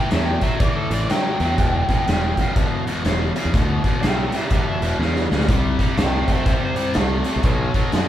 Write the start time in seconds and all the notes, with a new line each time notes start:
Already playing: G5
0.10 E2 A2 F#3 E5, snare, closed hi-hat
0.25 G5
0.41 A2 F#3 E5, kick, closed hi-hat
0.59 A2 E3 D5, kick, closed hi-hat
0.76 A4
0.90 A1 A2 E3 D5, closed hi-hat
1.09 A2 F#3 G5, snare, closed hi-hat
1.40 E2 A2 F#3, closed hi-hat
1.58 E1 E2 B2, kick, closed hi-hat
1.88 E2 B2, kick, closed hi-hat
2.07 E1 E2 C#3, snare, closed hi-hat
2.37 E2 C#3, kick, closed hi-hat
2.56 E2 B2, kick, closed hi-hat
2.87 E2 B2, closed hi-hat
3.04 E1 E2 C#3, snare, closed hi-hat
3.36 E2 C#3, closed hi-hat
3.45 E2
3.54 D2 E2 B2, kick, closed hi-hat
3.84 E2 B2, kick, closed hi-hat
4.01 B1 E2 C#3 E5 G5, snare, closed hi-hat
4.17 E5 G5
4.32 E2 C#3, closed hi-hat
4.37 G4 E5
4.50 E2 B2 G4 E5, kick, closed hi-hat
4.68 E5
4.80 E1 E2 B2, closed hi-hat
4.99 E2 C#3, snare
5.16 snare
5.31 D2 E2 C#3, snare
5.41 snare
5.49 C2 C3 G3, kick, closed hi-hat
5.79 C3 G3, kick, closed hi-hat
5.97 C2 C3 A3 E5 G5, snare, closed hi-hat
6.13 E5 G5
6.27 C3 A3, kick, closed hi-hat
6.32 C5 E5
6.46 C3 G3 C5 E5, kick, closed hi-hat
6.65 C5
6.76 C3 G3, closed hi-hat
6.94 C2 C3 A3, snare, closed hi-hat
7.24 C3 A3, closed hi-hat
7.36 C2
7.43 B1 B2 F#3, kick, closed hi-hat
7.74 B2 F#3, kick, closed hi-hat
7.92 F#2 B2 G#3, snare, closed hi-hat